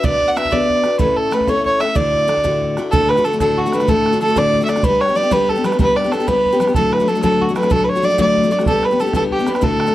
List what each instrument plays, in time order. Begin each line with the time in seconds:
0.03 steel-string acoustic guitar B3 D4 F#4 B4, fiddle D5, bodhran
0.22 bodhran
0.29 fiddle F#5
0.36 steel-string acoustic guitar B3 D4 F#4 B4, fiddle E5, bodhran
0.45 bodhran
0.51 steel-string acoustic guitar B3 D4 F#4 B4, fiddle D5, bodhran
0.69 bodhran
0.84 steel-string acoustic guitar D4 F#4 B4, bodhran
0.99 steel-string acoustic guitar A2 A3 C#4 E4 A4, fiddle B4, bodhran
1.16 fiddle A4, bodhran
1.31 steel-string acoustic guitar A3 C#4 E4 A4, fiddle B4, bodhran
1.40 bodhran
1.47 steel-string acoustic guitar A2 A3 C#4 E4 A4, fiddle C#5, bodhran
1.66 fiddle C#5, bodhran
1.80 steel-string acoustic guitar C#4 E4 A4, fiddle E5, bodhran
1.95 steel-string acoustic guitar D2 A2 D3 D4 E4 F#4, fiddle D5, bodhran
2.13 bodhran
2.28 steel-string acoustic guitar D3 D4 E4 F#4, bodhran
2.37 bodhran
2.44 steel-string acoustic guitar D2 A2 D3 D4 E4 F#4, bodhran
2.62 bodhran
2.77 steel-string acoustic guitar D3 D4 E4 F#4, bodhran
2.91 steel-string acoustic guitar D2 A2 D3 A3 D4 F#4, fiddle A4, bodhran
3.09 fiddle B4, bodhran
3.17 steel-string acoustic guitar D3 A3 D4 F#4
3.24 steel-string acoustic guitar D3 A3 D4 F#4, fiddle A4
3.33 steel-string acoustic guitar D3 A3 D4 F#4
3.40 steel-string acoustic guitar D2 A2 D3 A3 D4 F#4, fiddle A4, bodhran
3.58 fiddle F#4, bodhran
3.66 steel-string acoustic guitar D3 A3 D4 F#4
3.72 steel-string acoustic guitar D3 A3 D4 F#4, fiddle B4, bodhran
3.80 steel-string acoustic guitar D3 A3 D4 F#4, bodhran
3.88 steel-string acoustic guitar D2 A2 D3 A3 D4 F#4, fiddle A4, bodhran
4.06 bodhran
4.13 steel-string acoustic guitar D3 A3 D4 F#4
4.21 steel-string acoustic guitar D3 A3 D4 F#4, fiddle A4
4.28 steel-string acoustic guitar D3 A3 D4 F#4
4.36 steel-string acoustic guitar D2 A2 D3 A3 D4 F#4, fiddle D5, bodhran
4.54 bodhran
4.61 steel-string acoustic guitar D3 A3 D4 F#4
4.65 steel-string acoustic guitar D3 D4, fiddle D5 E5, bodhran
4.69 steel-string acoustic guitar A3 F#4
4.76 steel-string acoustic guitar D3 A3 D4 F#4, bodhran
4.83 steel-string acoustic guitar G3 B3 D4 G4, fiddle B4, bodhran
5.01 fiddle C#5, bodhran
5.08 steel-string acoustic guitar B3 D4 G4
5.15 steel-string acoustic guitar G3 B3 D4 G4, fiddle D5
5.23 steel-string acoustic guitar B3 D4 G4
5.31 steel-string acoustic guitar G3 B3 D4 G4, fiddle B4, bodhran
5.49 fiddle A4, bodhran
5.56 steel-string acoustic guitar B3 D4 G4
5.64 steel-string acoustic guitar G3 B3 D4 G4, fiddle B4, bodhran
5.72 steel-string acoustic guitar B3 D4 G4, bodhran
5.79 steel-string acoustic guitar G3 B3 D4 G4, fiddle B4, bodhran
5.96 fiddle D5, bodhran
6.04 steel-string acoustic guitar B3 D4 G4
6.12 steel-string acoustic guitar G3 B3 D4 G4, fiddle A4, bodhran
6.20 steel-string acoustic guitar B3 D4 G4
6.28 steel-string acoustic guitar G3 B3 D4 G4, fiddle B4, bodhran
6.45 bodhran
6.52 steel-string acoustic guitar B3 D4 G4
6.60 steel-string acoustic guitar G3 B3 D4 G4, bodhran
6.67 steel-string acoustic guitar B3 D4 G4, bodhran
6.75 steel-string acoustic guitar D2 A2 F#3 A3 D4 F#4, fiddle A4, bodhran
6.93 fiddle B4, bodhran
7.00 steel-string acoustic guitar F#3 A3 D4 F#4
7.08 steel-string acoustic guitar F#3 A3 D4 F#4, fiddle A4
7.15 steel-string acoustic guitar F#3 A3 D4 F#4
7.23 steel-string acoustic guitar D2 A2 F#3 A3 D4 F#4, fiddle A4, bodhran
7.41 fiddle F#4, bodhran
7.49 steel-string acoustic guitar F#3 A3 D4 F#4
7.55 steel-string acoustic guitar F#3 A3 D4 F#4, fiddle B4, bodhran
7.63 steel-string acoustic guitar F#3 A3 D4 F#4, bodhran
7.70 steel-string acoustic guitar D2 A2 F#3 A3 D4 F#4, fiddle A4, bodhran
7.84 fiddle B4
7.89 fiddle C#5
7.96 steel-string acoustic guitar F#3 A3 D4 F#4
8.02 steel-string acoustic guitar F#3 A3 D4 F#4, fiddle D5
8.10 steel-string acoustic guitar F#3 A3 D4 F#4
8.18 steel-string acoustic guitar D2 A2 F#3 A3 D4 F#4, fiddle D5, bodhran
8.37 bodhran
8.43 steel-string acoustic guitar F#3 A3 D4 F#4
8.51 steel-string acoustic guitar F#3 A3 D4 F#4
8.59 steel-string acoustic guitar F#3 A3 D4 F#4, bodhran
8.66 steel-string acoustic guitar G3 B3 D4 G4, fiddle A4, bodhran
8.83 fiddle B4, bodhran
8.91 steel-string acoustic guitar B3 D4 G4
9.00 steel-string acoustic guitar G3 B3 D4 G4, fiddle A4
9.07 steel-string acoustic guitar B3 D4 G4
9.13 steel-string acoustic guitar G3 B3 D4 G4, fiddle A4, bodhran
9.31 fiddle G4, bodhran
9.39 steel-string acoustic guitar B3 D4 G4
9.46 steel-string acoustic guitar G3 B3 D4 G4, fiddle B4, bodhran
9.54 steel-string acoustic guitar B3 D4 G4, bodhran
9.61 steel-string acoustic guitar D2 A2 D3 A3 D4 F#4, fiddle A4, bodhran
9.80 bodhran
9.87 steel-string acoustic guitar D3 A3 D4 F#4